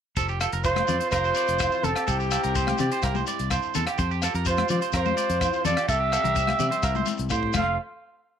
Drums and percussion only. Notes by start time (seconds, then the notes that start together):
0.17 kick, closed hi-hat, shekere
0.28 shekere
0.40 cross-stick, closed hi-hat, low agogo, shekere
0.52 closed hi-hat, shekere
0.64 kick, closed hi-hat, shekere
0.76 cross-stick, high conga, low agogo, shekere
0.88 closed hi-hat, low conga, shekere
1.00 closed hi-hat, shekere
1.11 kick, cross-stick, closed hi-hat, low agogo, shekere
1.24 shekere
1.35 closed hi-hat, shekere
1.47 closed hi-hat, shekere
1.59 kick, cross-stick, closed hi-hat, low agogo, shekere
1.72 shekere
1.83 closed hi-hat, low conga, shekere
1.96 cross-stick, closed hi-hat, low agogo, shekere
2.07 kick, closed hi-hat, shekere
2.20 shekere
2.31 cross-stick, closed hi-hat, low agogo, shekere
2.43 closed hi-hat, shekere
2.55 kick, closed hi-hat, shekere
2.67 cross-stick, high conga, low agogo, shekere
2.78 closed hi-hat, low conga, shekere
2.91 closed hi-hat, shekere
3.02 kick, cross-stick, closed hi-hat, low agogo, shekere
3.15 high conga, shekere
3.27 closed hi-hat, shekere
3.39 closed hi-hat, shekere
3.50 kick, cross-stick, closed hi-hat, low agogo, shekere
3.62 shekere
3.74 closed hi-hat, low conga, shekere
3.86 cross-stick, closed hi-hat, low agogo, shekere
3.98 kick, closed hi-hat, shekere
4.11 shekere
4.22 cross-stick, closed hi-hat, low agogo, shekere
4.34 closed hi-hat, shekere
4.45 kick, closed hi-hat, shekere
4.57 cross-stick, high conga, low agogo, shekere
4.68 closed hi-hat, low conga, shekere
4.81 closed hi-hat, shekere
4.92 kick, cross-stick, closed hi-hat, low agogo, shekere
5.05 high conga, shekere
5.17 closed hi-hat, shekere
5.30 closed hi-hat, shekere
5.41 kick, cross-stick, closed hi-hat, low agogo, shekere
5.53 shekere
5.65 closed hi-hat, low conga, shekere
5.77 cross-stick, closed hi-hat, low agogo, shekere
5.89 kick, closed hi-hat, shekere
6.12 cross-stick, closed hi-hat, low agogo, shekere
6.24 closed hi-hat, low conga, shekere
6.35 kick, closed hi-hat, shekere
6.47 cross-stick, high conga, low agogo, shekere
6.59 closed hi-hat, low conga, shekere
6.72 closed hi-hat, shekere
6.83 kick, cross-stick, closed hi-hat, low agogo, shekere
6.95 high conga, shekere
7.06 closed hi-hat, high conga, shekere
7.17 closed hi-hat, shekere
7.29 kick, low agogo, shekere
7.43 kick
7.53 kick, crash, high conga, low agogo, shekere